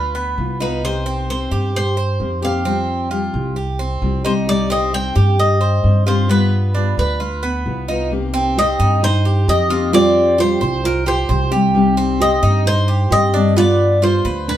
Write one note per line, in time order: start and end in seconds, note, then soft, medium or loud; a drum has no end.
0.00 0.34 D2 medium
0.00 0.14 F4 medium
0.00 0.61 B4 medium
0.15 0.59 B3 medium
0.37 1.45 C2 medium
0.37 0.59 G3 soft
0.37 0.60 B3 soft
0.37 0.59 F4 soft
0.60 0.83 B3 medium
0.60 1.05 D#4 medium
0.60 0.82 F4 medium
0.60 0.82 B4 medium
0.83 1.28 C3 medium
0.83 1.27 D#3 medium
0.83 1.28 A#3 medium
0.83 1.28 C4 medium
0.83 1.29 G4 medium
0.83 1.29 C5 medium
1.06 1.50 C4 medium
1.28 1.73 D#3 soft
1.28 1.73 A#3 soft
1.28 1.73 C4 medium
1.28 1.74 G4 medium
1.28 1.75 C5 medium
1.51 2.16 G2 medium
1.51 1.96 G4 medium
1.74 2.40 C5 medium
1.74 muted steel-string acoustic guitar stroke medium
1.97 2.41 C5 medium
2.19 3.27 F2 medium
2.19 2.41 D#3 soft
2.19 2.42 A#3 medium
2.19 2.41 C4 soft
2.19 2.41 G4 soft
2.42 2.65 D#3 soft
2.42 2.65 A#3 medium
2.42 2.64 C4 medium
2.42 2.64 G4 medium
2.42 2.65 G4 medium
2.42 2.86 F5 medium
2.65 3.09 F3 medium
2.65 3.10 G3 medium
2.65 3.09 C4 medium
2.65 3.10 C4 medium
2.65 3.11 G4 medium
3.10 3.54 F3 soft
3.10 3.55 G3 soft
3.10 3.55 C4 medium
3.10 3.55 F4 medium
3.10 3.56 G4 medium
3.34 3.98 C2 medium
3.56 3.78 G4 medium
3.56 muted steel-string acoustic guitar stroke medium
3.79 4.23 C4 medium
4.01 5.09 C2 medium
4.01 4.24 F3 soft
4.01 4.24 G3 soft
4.01 4.24 C4 soft
4.01 4.23 G4 medium
4.24 4.46 G3 medium
4.24 4.47 C4 medium
4.24 4.69 D#4 medium
4.24 4.46 G4 medium
4.24 4.32 C5 medium
4.46 4.91 C3 medium
4.46 4.90 D#3 medium
4.46 4.91 G3 medium
4.46 4.92 C4 medium
4.46 4.93 G4 medium
4.46 4.71 D5 loud
4.70 5.14 C4 medium
4.70 4.94 D#5 medium
4.92 5.37 D#3 medium
4.92 5.37 G3 medium
4.92 5.38 C4 medium
4.92 5.39 G5 medium
5.15 5.80 G2 medium
5.15 5.60 G4 medium
5.38 6.03 D#5 medium
5.38 muted steel-string acoustic guitar stroke medium
5.61 6.05 C5 medium
5.83 6.91 G2 medium
5.83 6.05 D#3 soft
5.83 6.06 G3 soft
5.83 6.06 C4 soft
5.83 6.05 G4 soft
6.06 6.29 D#3 medium
6.06 6.27 G3 medium
6.06 6.29 C4 medium
6.06 6.29 F4 medium
6.06 6.28 G4 medium
6.06 6.30 C5 medium
6.28 6.73 G3 medium
6.28 6.74 B3 medium
6.28 6.73 B3 medium
6.28 6.74 F4 medium
6.28 6.94 B4 medium
6.74 7.18 G3 soft
6.74 7.19 B3 medium
6.74 7.19 D4 medium
6.74 7.20 F4 medium
6.97 7.62 D2 medium
6.97 7.85 B4 medium
7.20 7.42 F4 medium
7.20 muted steel-string acoustic guitar stroke medium
7.43 7.87 B3 medium
7.65 8.73 C2 medium
7.65 7.87 G3 soft
7.65 7.88 B3 medium
7.65 7.87 F4 medium
7.88 8.11 B3 medium
7.88 8.10 D#4 medium
7.88 8.10 F4 medium
8.11 8.55 C3 medium
8.11 8.55 D#3 medium
8.11 8.56 A#3 medium
8.11 8.56 C4 medium
8.11 8.56 G4 medium
8.34 8.78 C4 medium
8.56 9.01 D#3 medium
8.56 9.01 A#3 medium
8.56 9.01 C4 medium
8.56 8.99 G4 medium
8.56 9.02 G4 medium
8.56 9.04 D#5 medium
8.79 9.44 G2 medium
8.79 9.24 D#4 medium
9.02 9.45 D#4 medium
9.02 9.49 C5 loud
9.02 muted steel-string acoustic guitar stroke medium
9.25 9.69 G4 medium
9.47 10.55 F2 medium
9.47 9.69 D#3 medium
9.47 9.69 A#3 soft
9.47 9.68 C4 soft
9.47 9.90 G4 medium
9.47 9.68 G4 medium
9.47 9.94 D#5 loud
9.69 9.91 D#3 medium
9.69 9.92 A#3 medium
9.69 9.92 C4 medium
9.69 9.92 F4 medium
9.69 9.91 G4 medium
9.92 10.36 F3 medium
9.92 10.37 G3 medium
9.92 10.38 C4 medium
9.92 10.37 C4 medium
9.92 10.35 F4 medium
9.92 10.38 G4 medium
9.92 10.40 D5 loud
10.38 10.82 F3 medium
10.38 10.83 G3 medium
10.38 10.83 C4 medium
10.38 10.81 F4 medium
10.38 10.60 G4 medium
10.38 10.83 G4 medium
10.38 10.86 C5 medium
10.61 11.25 C2 medium
10.61 11.05 C5 medium
10.83 11.05 F4 medium
10.83 11.06 A#4 medium
10.83 muted steel-string acoustic guitar stroke medium
11.06 11.49 F4 medium
11.06 11.28 G4 medium
11.06 11.49 C5 medium
11.28 12.37 C2 loud
11.28 11.51 F3 soft
11.28 11.51 G3 medium
11.28 11.51 C4 medium
11.28 11.50 G4 medium
11.28 11.51 C5 medium
11.51 11.74 G3 medium
11.51 11.74 C4 medium
11.51 11.73 G4 medium
11.51 11.96 G4 medium
11.74 12.19 C3 medium
11.74 12.19 D#3 medium
11.74 12.19 G3 medium
11.74 12.20 C4 medium
11.74 12.20 G4 medium
11.97 12.41 C4 medium
12.20 12.65 D#3 medium
12.20 12.65 G3 soft
12.20 12.65 C4 medium
12.20 12.63 G4 medium
12.20 12.66 G4 medium
12.20 12.63 D#5 loud
12.43 13.07 G2 medium
12.43 12.87 D#4 medium
12.66 13.08 D#4 medium
12.66 13.12 C5 loud
12.66 muted steel-string acoustic guitar stroke medium
12.88 13.32 G4 medium
13.11 14.18 G2 medium
13.11 13.33 D#3 medium
13.11 13.33 G3 medium
13.11 13.33 C4 medium
13.11 13.53 G4 medium
13.11 13.32 G4 medium
13.11 13.54 D#5 loud
13.34 13.56 D#3 medium
13.34 13.55 G3 medium
13.34 13.56 C4 medium
13.34 13.56 D4 medium
13.34 13.56 G4 medium
13.56 14.00 G3 medium
13.56 14.01 B3 medium
13.56 14.02 B3 medium
13.56 13.99 F4 medium
13.56 14.02 F4 medium
13.56 14.03 D5 loud
14.02 14.46 G3 soft
14.02 14.24 F4 medium
14.02 14.44 F4 medium
14.02 14.47 F4 medium
14.02 14.49 C5 medium
14.25 14.57 D2 medium
14.25 14.57 B4 medium
14.47 14.57 D4 medium
14.47 14.57 B4 medium
14.47 muted steel-string acoustic guitar stroke medium